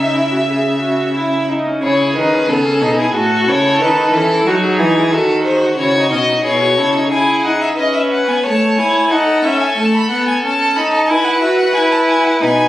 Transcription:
0.00 1.45 C#3 medium
0.00 0.15 D#4 medium
0.00 1.44 E5 medium
0.00 1.45 E5 medium
0.13 0.30 E4 medium
0.31 0.37 F#4 medium
0.48 0.81 G#4 medium
0.81 1.14 F#4 medium
1.15 1.50 E4 medium
1.49 1.68 D#4 medium
1.67 1.83 C#4 medium
1.82 2.17 C#3 medium
1.82 2.14 E4 medium
1.82 3.12 G#4 medium
1.82 2.14 C#5 medium
2.16 2.50 D#3 medium
2.16 2.35 D#4 medium
2.16 2.51 B4 medium
2.34 2.49 C#4 medium
2.48 2.83 C#3 medium
2.48 2.65 B3 medium
2.48 2.98 A4 medium
2.66 2.84 C#4 medium
2.81 3.14 B2 medium
2.81 3.00 D#4 medium
2.99 3.14 E4 medium
2.99 3.14 G#4 medium
3.14 3.49 A2 medium
3.14 3.49 F#4 medium
3.14 3.51 F#4 medium
3.14 4.44 A4 medium
3.47 3.82 C#3 medium
3.47 3.83 E4 medium
3.47 3.81 C#5 medium
3.80 4.12 D#3 medium
3.80 4.13 D#4 medium
3.80 4.15 B4 medium
4.13 4.45 E3 medium
4.13 4.30 C#4 medium
4.13 4.48 A4 medium
4.31 4.49 E4 medium
4.46 4.81 F#3 medium
4.46 5.12 D#4 medium
4.46 4.78 F#4 medium
4.46 4.62 F#4 medium
4.63 4.81 G#4 medium
4.79 5.14 E3 medium
4.79 4.98 D#4 medium
4.79 5.13 G#4 medium
4.96 5.13 E4 medium
5.11 5.77 D#3 medium
5.11 6.42 F#4 medium
5.11 5.47 F#4 medium
5.11 5.44 A4 medium
5.44 5.62 G#4 medium
5.44 5.77 C5 medium
5.62 5.69 F#4 medium
5.78 6.13 C#3 medium
5.78 5.95 E4 medium
5.78 6.10 C#5 medium
5.96 6.11 D#4 medium
6.11 6.44 B2 medium
6.11 6.18 C#4 medium
6.11 6.43 D#5 medium
6.28 6.35 D#4 medium
6.44 6.79 B2 medium
6.44 6.62 E4 medium
6.44 6.77 G#4 medium
6.44 7.10 C#5 medium
6.61 6.79 F#4 medium
6.77 7.12 C#3 medium
6.77 6.96 E4 medium
6.77 7.08 A4 medium
6.94 7.10 D#4 medium
7.09 7.46 E4 medium
7.09 7.74 G#4 medium
7.09 7.43 G#5 medium
7.45 7.78 D#4 medium
7.45 7.61 F#5 medium
7.61 7.68 E5 medium
7.76 8.28 C#4 medium
7.76 8.46 B4 medium
7.76 7.93 D#5 medium
7.94 8.01 E5 medium
8.12 8.30 F#5 medium
8.29 8.35 B3 medium
8.29 8.45 G#5 medium
8.44 8.80 A3 medium
8.44 9.10 C#5 medium
8.44 8.78 A5 medium
8.78 9.13 E4 medium
8.78 9.13 G#5 medium
9.11 9.44 D#4 medium
9.11 11.11 A4 medium
9.11 9.46 F#5 medium
9.44 9.77 C#4 medium
9.44 9.62 E5 medium
9.61 9.79 G#5 medium
9.77 10.10 A3 medium
9.77 9.96 A5 medium
9.94 10.10 B5 medium
10.10 10.43 B3 medium
10.10 10.27 F#5 medium
10.27 10.34 G#5 medium
10.44 10.78 C#4 medium
10.44 10.78 A5 medium
10.76 11.10 D#4 medium
10.76 10.92 B5 medium
10.92 11.08 A5 medium
11.08 11.41 E4 medium
11.08 12.40 B4 medium
11.08 11.26 G#5 medium
11.25 11.43 F#5 medium
11.42 11.74 F#4 medium
11.42 11.58 E5 medium
11.59 11.74 F#5 medium
11.74 12.43 E4 loud
11.74 11.81 G#5 medium
11.92 11.98 A5 medium
12.07 12.26 G#5 medium
12.24 12.39 F#5 medium
12.39 12.68 B2 medium
12.39 12.68 D#4 medium
12.39 12.68 B4 medium
12.39 12.68 G#5 medium

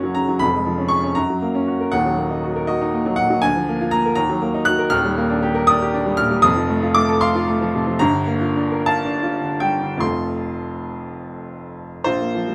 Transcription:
0.00 0.37 F#1 medium
0.00 0.37 F#2 medium
0.00 0.04 F#3 medium
0.00 0.24 F#3 medium
0.00 0.44 A#3 medium
0.00 0.44 C#4 medium
0.00 0.43 F#4 medium
0.00 0.44 A#4 medium
0.00 0.44 C#5 medium
0.00 0.15 F#5 medium
0.00 0.44 G#5 loud
0.15 0.36 C#3 medium
0.15 0.41 A#5 medium
0.29 0.41 F#3 medium
0.39 1.14 F1 medium
0.39 1.14 F2 medium
0.39 0.91 B5 loud
0.53 0.74 G#3 medium
0.66 0.87 F3 medium
0.78 0.99 C#4 medium
0.88 1.11 G#4 medium
0.88 1.15 C#6 loud
1.03 1.16 C#4 medium
1.15 1.90 F#2 medium
1.15 1.92 A#5 medium
1.30 1.50 F#3 medium
1.42 1.62 A#3 medium
1.55 1.75 C#4 medium
1.67 1.88 F#4 medium
1.81 1.93 A#4 medium
1.92 3.39 D#1 medium
1.92 3.39 D#2 medium
1.92 2.68 F#5 loud
2.06 2.26 F#3 medium
2.18 2.38 A#3 medium
2.31 2.51 D#4 medium
2.44 2.64 F#4 medium
2.56 2.76 A#4 medium
2.67 2.89 F#4 medium
2.67 3.18 D#5 medium
2.81 3.01 D#4 medium
2.94 3.14 A#3 medium
3.06 3.26 F#3 medium
3.16 3.38 A#2 medium
3.16 3.42 F#5 loud
3.30 3.43 F#3 medium
3.42 4.15 D2 medium
3.42 3.92 G#5 loud
3.56 3.76 F3 medium
3.69 3.88 A#3 medium
3.81 4.01 F4 medium
3.91 4.12 A#3 medium
3.91 4.14 A#5 loud
4.06 4.18 A#4 medium
4.15 4.89 D#2 medium
4.15 4.66 A#5 loud
4.30 4.49 F#3 medium
4.42 4.62 A#3 medium
4.54 4.74 D#4 medium
4.65 4.87 F#4 medium
4.65 4.91 F#6 loud
4.79 4.92 A#4 medium
4.90 6.39 D#1 medium
4.90 6.40 D#2 medium
4.90 5.68 F6 loud
5.05 5.25 G3 medium
5.18 5.38 A#3 medium
5.30 5.50 D4 medium
5.43 5.63 G4 medium
5.55 5.76 A#4 medium
5.67 5.89 D5 medium
5.67 6.18 D#6 loud
5.82 6.02 G4 medium
5.94 6.14 D4 medium
6.06 6.26 G3 medium
6.17 6.39 A#2 medium
6.17 6.43 F6 loud
6.31 6.44 G3 medium
6.42 7.96 F1 medium
6.42 7.96 F2 loud
6.42 6.95 D#6 loud
6.56 6.77 F3 medium
6.69 6.91 A3 medium
6.83 7.04 F4 medium
6.95 7.17 A3 medium
6.95 7.21 D6 loud
7.09 7.30 A4 medium
7.21 7.43 F5 medium
7.21 7.47 C6 loud
7.35 7.56 F4 medium
7.48 7.69 A3 medium
7.61 7.82 F3 medium
7.75 7.96 C3 medium
7.87 8.01 F3 medium
7.99 9.97 G1 medium
7.99 9.98 G2 medium
7.99 8.88 A#5 loud
8.14 8.36 D3 medium
8.27 8.50 A#3 medium
8.41 8.66 F4 medium
8.56 8.82 D4 medium
8.72 8.98 A#4 medium
8.86 9.15 F5 medium
8.86 9.61 A5 loud
9.05 9.34 D4 medium
9.23 9.54 F4 medium
9.41 9.74 D3 medium
9.60 9.93 G3 medium
9.60 10.01 G5 medium
9.82 10.02 D3 medium
9.97 12.00 F2 medium
9.97 12.01 F3 medium
9.97 12.01 A3 medium
9.97 12.02 F4 medium
9.97 11.08 C6 medium
10.01 12.02 F1 medium
12.04 12.55 A#1 medium
12.04 12.55 F4 medium
12.04 12.55 C5 loud
12.21 12.42 A#3 medium
12.35 12.55 F3 medium
12.47 12.55 G3 soft

